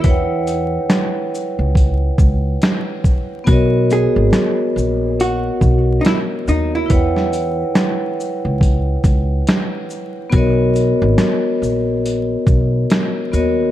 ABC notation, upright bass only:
X:1
M:4/4
L:1/16
Q:"Swing 16ths" 1/4=70
K:B
V:1 name="Upright bass" clef=bass
E,,4 z3 C,,3 C,,2 z4 | B,,,3 G,,, z2 A,,,4 B,,,2 z2 D,,2 | E,,4 z3 C,,3 C,,2 z4 | B,,,3 G,,, z2 A,,,4 B,,,2 z2 D,,2 |]